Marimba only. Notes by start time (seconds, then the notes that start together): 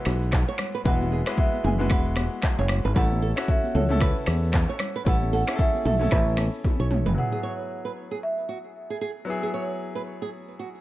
Already playing: B4
0.87 F#5
1.39 E5
1.66 G#5
1.92 F#5
2.97 F#5
3.50 E5
3.77 C#5
4.03 B4
5.08 F#5
5.34 F#5
5.61 E5
5.87 E5
6.13 E5
7.18 F#5
8.23 E5